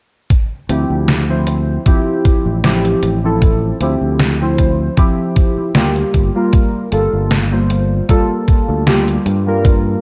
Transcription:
0.30 kick loud
0.30 closed hi-hat medium
0.69 0.83 D2 medium
0.69 1.24 F3 medium
0.69 1.24 C4 medium
0.69 1.25 E4 medium
0.69 1.25 G4 medium
0.69 closed hi-hat medium
0.90 1.77 D2 medium
1.08 snare loud
1.08 closed hi-hat medium
1.29 1.82 F3 medium
1.29 1.82 C4 medium
1.29 1.82 E4 medium
1.29 1.82 C5 medium
1.47 closed hi-hat medium
1.85 2.59 F3 medium
1.85 2.60 C4 medium
1.85 2.60 E4 medium
1.85 2.60 G4 medium
1.85 kick loud
1.85 closed hi-hat medium
2.25 kick medium
2.25 closed hi-hat medium
2.46 2.93 A1 medium
2.64 3.19 F3 medium
2.64 3.19 C4 medium
2.64 3.19 E4 medium
2.64 3.19 G4 medium
2.64 snare loud
2.64 closed hi-hat medium
2.85 closed hi-hat soft
3.03 3.71 A1 medium
3.03 closed hi-hat medium
3.24 3.77 F3 medium
3.24 3.77 C4 medium
3.24 3.77 E4 medium
3.24 3.77 A4 medium
3.42 kick loud
3.42 closed hi-hat medium
3.80 3.95 D2 medium
3.80 4.36 F3 medium
3.80 4.36 C4 medium
3.80 4.36 E4 medium
3.80 4.37 G4 medium
3.80 closed hi-hat medium
4.01 4.88 D2 medium
4.20 snare loud
4.20 closed hi-hat medium
4.41 4.93 F3 medium
4.41 4.94 C4 medium
4.41 4.94 E4 medium
4.41 4.94 C5 medium
4.58 kick medium
4.58 closed hi-hat medium
4.97 5.71 F3 medium
4.97 5.71 C4 medium
4.97 5.72 E4 medium
4.97 5.72 G4 loud
4.97 kick loud
4.97 closed hi-hat medium
5.36 kick loud
5.36 closed hi-hat medium
5.58 muted fingered electric bass stroke soft
5.75 6.03 D2 medium
5.75 6.30 G3 medium
5.75 6.31 A#3 medium
5.75 6.31 F4 medium
5.75 6.31 G4 medium
5.75 snare loud
5.75 closed hi-hat medium
5.96 closed hi-hat soft
6.14 6.29 G1 medium
6.14 kick medium
6.14 closed hi-hat medium
6.35 6.88 G3 medium
6.35 6.88 A#3 medium
6.35 6.88 F4 medium
6.35 6.89 A#4 medium
6.53 kick loud
6.53 closed hi-hat medium
6.91 7.07 G1 medium
6.91 7.47 G3 medium
6.91 7.47 A#3 medium
6.91 7.48 F4 medium
6.91 7.48 A4 medium
6.91 closed hi-hat medium
7.13 8.00 G1 medium
7.31 snare loud
7.31 closed hi-hat medium
7.51 8.05 G3 medium
7.51 8.05 A#3 medium
7.51 8.05 F4 medium
7.51 8.05 C5 medium
7.70 closed hi-hat medium
8.08 8.83 G3 medium
8.08 8.83 A#3 medium
8.08 8.83 F4 medium
8.08 8.83 A4 loud
8.08 kick loud
8.08 closed hi-hat medium
8.48 kick loud
8.48 closed hi-hat medium
8.69 9.17 D2 medium
8.87 9.42 G3 medium
8.87 9.42 A#3 medium
8.87 9.42 F4 medium
8.87 9.43 G4 medium
8.87 snare loud
8.87 closed hi-hat medium
9.08 closed hi-hat soft
9.26 9.95 G2 medium
9.26 closed hi-hat medium
9.47 10.00 G3 medium
9.47 10.00 A#3 medium
9.47 10.00 F4 medium
9.47 10.00 A#4 medium
9.65 kick loud
9.65 closed hi-hat medium

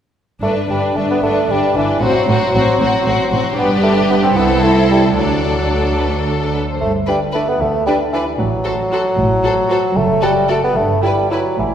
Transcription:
0.41 0.49 G1 soft
0.41 0.50 G2 soft
0.41 0.54 A3 medium
0.41 0.67 D4 soft
0.41 0.68 D4 soft
0.41 0.68 B4 soft
0.68 0.77 G1 soft
0.68 0.76 G2 soft
0.68 0.98 G3 soft
0.68 0.95 D4 soft
0.68 0.94 B4 soft
0.95 1.04 G1 soft
0.95 1.04 G2 soft
0.95 1.09 A3 soft
0.95 1.21 D4 soft
0.95 1.22 D4 soft
0.95 1.22 B4 soft
1.11 1.22 B3 medium
1.22 1.30 G1 soft
1.22 1.30 G2 soft
1.22 1.52 A3 medium
1.22 1.48 D4 soft
1.22 1.49 D4 soft
1.22 1.48 B4 soft
1.49 1.58 G1 soft
1.49 1.57 G2 soft
1.49 1.78 G3 medium
1.49 1.75 D4 soft
1.49 1.76 D4 soft
1.49 1.74 B4 soft
1.74 1.84 G1 soft
1.74 1.82 G2 soft
1.74 2.04 E3 medium
1.74 2.01 D4 soft
1.74 2.02 D4 soft
1.74 2.01 B4 soft
2.01 2.10 A1 soft
2.01 2.09 A2 soft
2.01 3.58 F#3 medium
2.01 2.27 C4 soft
2.01 2.28 F#4 soft
2.01 2.27 C5 soft
2.27 2.35 A1 soft
2.27 2.36 A2 medium
2.27 2.53 C4 soft
2.27 2.54 F#4 soft
2.27 2.53 C5 soft
2.54 2.62 A1 soft
2.54 2.62 A2 soft
2.54 2.78 C4 soft
2.54 2.80 F#4 soft
2.54 2.79 C5 soft
2.79 2.87 A1 soft
2.79 2.88 A2 soft
2.79 3.04 C4 soft
2.79 3.05 F#4 soft
2.79 3.05 C5 soft
3.05 3.13 A1 soft
3.05 3.14 A2 soft
3.05 3.30 C4 soft
3.05 3.31 F#4 soft
3.05 3.31 C5 soft
3.31 3.40 A1 soft
3.31 3.40 A2 soft
3.31 3.57 C4 soft
3.31 3.57 F#4 soft
3.31 3.57 C5 soft
3.56 4.32 G1 soft
3.56 4.32 G2 medium
3.56 3.70 B3 medium
3.56 4.32 D4 soft
3.56 4.31 G4 soft
3.56 4.32 B4 soft
3.83 3.95 A3 medium
4.10 4.16 B3 medium
4.23 4.38 C4 medium
4.36 5.15 C2 soft
4.36 5.16 C2 soft
4.36 4.64 B3 medium
4.36 5.17 E4 soft
4.36 5.17 A4 soft
4.36 5.17 C5 soft
4.63 4.90 A3 medium
4.91 5.03 G3 soft
5.17 6.57 D2 soft
5.17 6.58 D2 soft
5.17 6.51 F#3 medium
5.17 6.57 D4 soft
5.17 6.58 A4 soft
5.17 5.93 D5 soft
5.98 6.06 B4 soft
6.27 6.53 A4 soft
6.53 6.58 B4 soft
6.68 6.81 C5 soft
6.80 7.44 G1 soft
6.80 7.44 G2 soft
6.80 6.92 A3 medium
7.07 7.20 G3 soft
7.07 7.16 D4 soft
7.07 7.15 B4 soft
7.07 7.16 D5 soft
7.32 7.50 A3 soft
7.32 7.42 D4 soft
7.32 7.40 B4 soft
7.32 7.42 D5 soft
7.48 7.62 B3 medium
7.60 8.23 D2 soft
7.60 7.86 A3 medium
7.86 7.98 G3 medium
7.86 7.95 D4 soft
7.86 7.95 B4 soft
7.86 7.94 D5 soft
8.13 8.24 E3 medium
8.13 8.21 D4 soft
8.13 8.22 B4 soft
8.13 8.21 D5 soft
8.38 9.01 A1 medium
8.38 9.02 A2 medium
8.38 9.98 F#3 medium
8.64 8.73 F#4 soft
8.64 8.73 A4 soft
8.64 8.72 C5 soft
8.91 9.00 F#4 soft
8.91 9.01 A4 soft
8.91 8.99 C5 soft
9.17 9.80 A1 medium
9.17 9.80 A2 medium
9.43 9.51 F#4 soft
9.43 9.53 A4 soft
9.43 9.51 C5 soft
9.69 9.77 F#4 soft
9.69 9.79 A4 soft
9.69 9.77 C5 soft
9.95 10.59 F#1 medium
9.95 10.59 F#2 medium
9.95 10.24 A3 medium
10.21 10.51 G3 medium
10.21 10.30 F#4 soft
10.21 10.30 A4 soft
10.21 10.29 D5 soft
10.48 10.63 A3 medium
10.48 10.56 F#4 soft
10.48 10.57 A4 soft
10.48 10.56 D5 soft
10.64 10.78 B3 medium
10.76 11.42 G1 medium
10.76 11.42 G2 medium
10.76 11.02 A3 medium
11.03 11.30 G3 medium
11.03 11.11 E4 soft
11.03 11.13 B4 soft
11.03 11.11 D5 soft
11.30 11.58 F#3 soft
11.30 11.39 E4 soft
11.30 11.40 B4 soft
11.30 11.39 D5 soft
11.58 11.74 A1 soft
11.58 11.74 A2 soft
11.58 11.74 E3 medium

